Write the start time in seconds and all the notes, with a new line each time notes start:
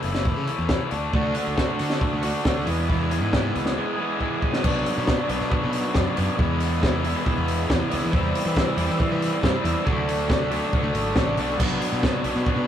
Already playing: C#3 E3
0.03 F#1 A3 C#4 E4, open hi-hat
0.14 snare
0.25 kick
0.36 C#3
0.46 A3 C#4 E4, open hi-hat
0.59 E2
0.69 E3 A3 C#4 E4, kick, snare
0.90 D2 D3 A3 D4 F#4, open hi-hat
1.12 D2 D3 A3 D4 F#4, kick
1.34 A3 D4 F#4, open hi-hat
1.47 D2
1.56 D3 A3 D4 F#4, kick, snare
1.79 D3 A3 D4 F#4, open hi-hat
1.90 snare
2.00 D3 A3 D4 F#4, kick
2.13 D2
2.22 A3 D4 F#4, open hi-hat
2.45 D2 D3 A3 D4 F#4, kick, snare
2.65 E2 B2 E3 G#3 B3 E4 G#4, open hi-hat
2.88 E2 B2 E3 G#3 B3 G#4, kick
2.93 E4
3.11 E3 G#3 B3 E4 G#4, open hi-hat
3.23 G#2
3.32 E2 B2 E3 G#3 B3 G#4, kick, snare
3.37 E4
3.53 C#2 E3 G#3 B3 G#4, open hi-hat
3.66 snare
3.77 E3 G#3 B3 E4
3.97 E3 G#3 B3 E4 G#4
4.19 E3 G#3 B3 E4 G#4, kick
4.41 G#3 B3 E4, kick
4.53 snare
4.64 B1 B2 F#3 B3 D4 F#4, kick, crash
4.86 open hi-hat
4.97 B2
5.06 B2 F#3 B3 D4 F#4, kick, snare
5.28 B1 B2 F#3 B3 D4 F#4, open hi-hat
5.40 B2, snare
5.50 B2 F#3 B3 D4 F#4, kick
5.64 B2
5.73 open hi-hat
5.94 F#2 B2 F#3 B3 D4 F#4, kick, snare
6.17 F#2 B2 F#3 B3 D4 F#4, open hi-hat
6.37 E2 B2 E3 G#3 B3 E4, kick
6.60 open hi-hat
6.82 E2 B2 E3 G#3 B3 E4, kick, snare
7.04 E2 B2 E3 G#3 B3 E4, open hi-hat
7.15 snare
7.25 E2 B2 E3 G#3 B3 E4, kick
7.38 E2
7.48 open hi-hat
7.68 E2 B2 E3 G#3 B3 E4, kick, snare
7.90 C#2 E2 B2 E3 G#3 B3 E4, open hi-hat
8.04 E3
8.13 E2 E3 G3 C4 E4, kick
8.35 open hi-hat
8.45 E3
8.56 E3 G3 C4 E4, kick, snare
8.77 E2 E3 G3 C4 E4, open hi-hat
8.89 E3, snare
9.00 E3 G3 C4 E4, kick
9.10 E3
9.22 open hi-hat
9.43 G2 E3 G3 C4 E4, kick, snare
9.64 E2 E3 G3 C4 E4, open hi-hat
9.85 D2 D3 F#3 A3 D4 F#4, kick
10.09 open hi-hat
10.28 D3 F#3 A3 D4 F#4, kick, snare
10.50 D3 F#3 A3 D4 F#4, open hi-hat
10.63 snare
10.73 D3 F#3 A3 D4 F#4, kick
10.83 D2
10.93 G#1, open hi-hat
11.16 A1 D3 F#3 A3 D4 F#4, kick, snare
11.37 B1 D3 F#3 A3 D4 F#4, open hi-hat
11.60 B1 B2 F#3 B3 D4 F#4, kick, crash
11.82 open hi-hat
11.93 B2
12.03 B2 F#3 B3 D4 F#4, kick, snare
12.24 B1 B2 F#3 B3 D4 F#4, open hi-hat
12.35 B2, snare
12.46 B2 F#3 B3 D4 F#4, kick
12.56 B2